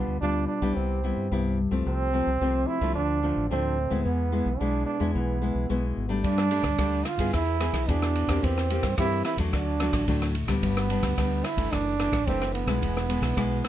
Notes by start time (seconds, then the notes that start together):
Already playing: B2 G3 B3 D4 F4
0.07 D2
0.21 D2 B2 G3 D4 F4
0.48 D4
0.62 B1 G3 B3 E4
0.76 C2 C3 C4
1.04 G3 B3 E4
1.17 G2
1.31 C2 G2 G3 B3 E4
1.71 C2 F3 A3 C4
1.86 C2 C3 C4
2.13 F3 A3 C4
2.27 C2
2.41 C2 C3 F3 A3 C4
2.67 E4
2.81 C2 F3 A3 D4
2.95 D2 D3 D4
3.23 F3 A3 D4
3.36 A1
3.50 D2 A2 F3 A3 C4 D4
3.90 D2 G#3 B3 E4
4.04 E2 E3 B3
4.32 G#3 B3 E4
4.46 B1
4.59 B1 B2 G#3 B3 D4 E4
4.86 D4
5.00 E2 G#3 B3 E4
5.14 B1 E3 B3
5.42 G#3 B3 E4
5.55 B1
5.69 B1 B2 G#3 B3 E4
5.97 G#1
6.09 G3 A3 D4
6.24 G2 D4, kick, ride
6.38 cross-stick
6.51 G3 A3 D4, ride
6.63 D2, kick, cross-stick, ride
6.79 D2 D3 G3 A3 D4, kick, cross-stick, ride
7.05 F4, cross-stick, ride
7.18 G2 B3 E4 G#4, kick, ride
7.34 E2 E3 E4, kick, cross-stick, ride
7.60 B3 E4 G#4, cross-stick, ride
7.73 B1, kick, cross-stick, ride
7.89 E2 B2 B3 D4 E4 G#4, kick, ride
8.02 cross-stick
8.15 ride
8.28 E2 A#3 C4 G4, kick, cross-stick, ride
8.43 E2 E3 C4, kick, ride
8.58 cross-stick
8.70 A#3 C4 G4, ride
8.82 G2, kick, cross-stick, ride
8.98 G2 E3 A#3 C4 E4 G4, kick, cross-stick, ride
9.25 E4, cross-stick, ride
9.37 E2 F#3 A3 D4, kick, ride
9.53 D2 D3 D4, kick, cross-stick, ride
9.80 F#3 A3 D4, cross-stick, ride
9.92 A1, kick, cross-stick, ride
10.08 D2 A2 F#3 A3 D4, kick, ride
10.22 cross-stick
10.35 ride
10.47 D2 G3 B3 D4, kick, cross-stick, ride
10.63 G1 G2 B3, kick, ride
10.77 cross-stick
10.90 G3 B3 D4, ride
11.02 D2, kick, cross-stick, ride
11.18 D2 D3 G3 B3 D4, kick, cross-stick, ride
11.44 E4, cross-stick, ride
11.57 G1 E3 A3 D4, kick, ride
11.72 F#1 F#2 D4, kick, cross-stick, ride
12.00 E3 A3 D4, cross-stick, ride
12.11 A1, kick, cross-stick, ride
12.27 F#1 F#2 E3 A3 C4 D4, kick, ride
12.42 cross-stick
12.54 B3, ride
12.66 B1 G#3 B3 E4, kick, cross-stick, ride
12.82 E1 E3, kick, ride
12.97 cross-stick
13.09 G#3 B3 E4, ride
13.21 B1, kick, cross-stick, ride
13.37 B1 B2 G#3 B3 E4, kick, cross-stick, ride
13.65 cross-stick, ride